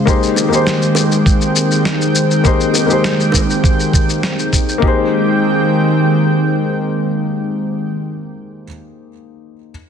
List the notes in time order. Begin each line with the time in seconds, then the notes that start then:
Already playing: G#3
0.05 D#3 A#3 C4 D#4 G4 G#4 C5 G5, kick, shaker
0.23 shaker
0.36 high bongo, shaker
0.49 A#3 D#4 G4
0.53 G#4 C5, shaker
0.67 snare, shaker
0.82 shaker
0.95 high bongo, shaker
1.12 shaker
1.26 kick, shaker
1.41 shaker
1.56 shaker
1.71 shaker
1.85 snare, shaker
2.01 shaker
2.16 shaker
2.31 shaker
2.44 A#3 D#4 G4 G#4 C5, kick, shaker
2.61 shaker
2.74 high bongo, shaker
2.86 A#3 D#4 G4, high bongo
2.90 G#4 C5, shaker
3.04 snare, shaker
3.20 shaker
3.32 kick, high bongo, shaker
3.50 shaker
3.64 kick, shaker
3.80 shaker
3.93 kick, shaker
4.10 shaker
4.23 snare, shaker
4.39 shaker
4.53 kick, shaker
4.69 shaker
4.78 G#3 A#3 C4 D#4
4.82 D#3 G4 G#4 G5, kick
4.87 C5